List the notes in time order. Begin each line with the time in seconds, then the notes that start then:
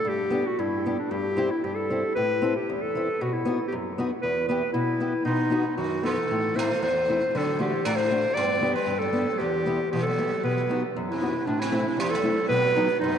0.05 G2 G4
0.30 B3 D4 G4
0.47 F#4
0.59 G2 E4
0.86 B3 D4 G4
0.99 D4
1.11 G2 G4
1.37 C4 E4 G4
1.51 E4
1.64 G2 G4
1.75 A4
1.90 C4 E4 G4
2.15 A2 B4
2.42 C4 E4 A4
2.56 G4
2.69 E2
2.81 A4
2.95 C4 E4 A4
3.21 B2 F#4
3.33 E4
3.45 B3 D#4 F#4
3.68 G4
3.72 F#2
3.98 B3 D#4 F#4
4.22 E2 B4
4.48 B3 E4 G4 B4
4.73 B2 E4
5.00 B3 E4 G4
5.25 B2 D#4
5.50 B3 D#4 F#4
5.77 F#2 D#3 F#4
6.03 E3 B3 D#4 F#4 A4
6.31 A2
6.54 A3 C4 E4 C5
6.59 A3
6.82 E2 A3 C5
7.08 A3 C4 E4
7.35 D3 F#3 A4
7.59 E3 A3 D4 F#4 G4
7.85 A2 A3 D5
7.96 A3 C5
8.10 A3 D4 F#4
8.34 G2 B3 D5
8.61 B3 D4 G4
8.75 G3 B4
8.86 G2
8.99 F#3 A4
9.13 B3 D4 G4
9.38 E2 E3 G4
9.66 B3 E4 G4
9.92 B2 E3 G4
10.03 A4
10.07 F#3
10.18 B3 E4 G4
10.43 B2 F#3 B4
10.69 B3 D#4 F#4
10.96 F#2
11.10 C3 E4
11.21 B3 D#4 F#4
11.46 A2 D4
11.60 C3 E4
11.72 A3 C4 E4
11.97 E2 E3 G4
12.10 A4
12.15 F#3
12.23 A3 C4 E4
12.49 B2 F#3 B4
12.75 F#3 B3 D#4
13.00 F#2 B2 D#4